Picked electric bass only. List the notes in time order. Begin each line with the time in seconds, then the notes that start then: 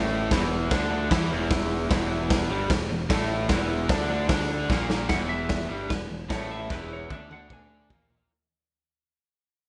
Already playing: A1
0.32 E1
0.71 D2
0.91 D2
1.11 E2
1.32 E1
1.91 E1
2.50 G1
2.70 E1
2.90 E1
3.10 A1
3.50 E1
3.89 D2
4.09 D2
4.30 D2
4.70 A#1
5.10 E1
5.70 G1
5.91 E1
6.10 E1
6.31 A1
6.70 E1
7.10 D2
7.31 D2
7.51 D2
7.90 A#1